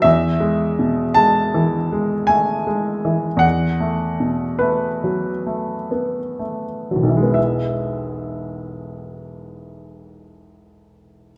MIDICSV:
0, 0, Header, 1, 2, 480
1, 0, Start_track
1, 0, Key_signature, 4, "major"
1, 0, Tempo, 1123596
1, 23, Time_signature, 3, 2, 24, 8
1, 1465, Tempo, 1188119
1, 1945, Tempo, 1290323
1, 2425, Tempo, 1452785
1, 2905, Tempo, 1315789
1, 3385, Tempo, 1376147
1, 4328, End_track
2, 0, Start_track
2, 0, Title_t, "Grand piano"
2, 0, Program_c, 0, 0
2, 0, Control_c, 0, 64, 127
2, 8, Note_on_c, 0, 76, 77
2, 18, Note_on_c, 0, 40, 51
2, 31, Control_c, 0, 64, 0
2, 109, Control_c, 0, 64, 127
2, 172, Note_on_c, 0, 56, 39
2, 338, Note_on_c, 0, 47, 33
2, 439, Note_off_c, 0, 56, 0
2, 489, Note_on_c, 0, 81, 78
2, 498, Note_on_c, 0, 56, 39
2, 499, Note_off_c, 0, 76, 0
2, 601, Note_off_c, 0, 47, 0
2, 660, Note_on_c, 0, 52, 38
2, 756, Note_off_c, 0, 56, 0
2, 822, Note_on_c, 0, 56, 39
2, 914, Note_off_c, 0, 52, 0
2, 969, Note_on_c, 0, 80, 66
2, 973, Note_off_c, 0, 81, 0
2, 978, Note_on_c, 0, 57, 36
2, 1078, Note_off_c, 0, 56, 0
2, 1140, Note_on_c, 0, 56, 34
2, 1142, Note_off_c, 0, 57, 0
2, 1302, Note_on_c, 0, 52, 36
2, 1400, Note_off_c, 0, 56, 0
2, 1432, Note_off_c, 0, 40, 0
2, 1438, Note_on_c, 0, 40, 47
2, 1448, Note_on_c, 0, 78, 72
2, 1460, Note_off_c, 0, 80, 0
2, 1465, Note_off_c, 0, 52, 0
2, 1475, Control_c, 0, 64, 0
2, 1552, Control_c, 0, 64, 127
2, 1616, Note_on_c, 0, 57, 36
2, 1776, Note_on_c, 0, 47, 30
2, 1877, Note_off_c, 0, 57, 0
2, 1933, Note_on_c, 0, 71, 54
2, 1938, Note_off_c, 0, 78, 0
2, 1942, Note_on_c, 0, 57, 33
2, 2036, Note_off_c, 0, 47, 0
2, 2101, Note_on_c, 0, 54, 33
2, 2193, Note_off_c, 0, 57, 0
2, 2261, Note_on_c, 0, 57, 32
2, 2359, Note_off_c, 0, 54, 0
2, 2426, Note_on_c, 0, 59, 28
2, 2520, Note_off_c, 0, 57, 0
2, 2585, Note_off_c, 0, 59, 0
2, 2585, Note_on_c, 0, 57, 29
2, 2664, Note_off_c, 0, 71, 0
2, 2756, Note_on_c, 0, 54, 31
2, 2772, Note_on_c, 0, 28, 37
2, 2795, Note_on_c, 0, 35, 31
2, 2816, Note_on_c, 0, 52, 33
2, 2841, Note_on_c, 0, 56, 32
2, 2847, Note_off_c, 0, 57, 0
2, 2861, Note_on_c, 0, 59, 33
2, 2882, Note_off_c, 0, 40, 0
2, 2885, Note_on_c, 0, 64, 31
2, 2898, Note_on_c, 0, 76, 45
2, 2908, Note_off_c, 0, 54, 0
2, 2914, Control_c, 0, 64, 0
2, 2983, Control_c, 0, 64, 127
2, 4300, Note_off_c, 0, 28, 0
2, 4325, Note_off_c, 0, 35, 0
2, 4328, Note_off_c, 0, 52, 0
2, 4328, Note_off_c, 0, 56, 0
2, 4328, Note_off_c, 0, 59, 0
2, 4328, Note_off_c, 0, 64, 0
2, 4328, Note_off_c, 0, 76, 0
2, 4328, End_track
0, 0, End_of_file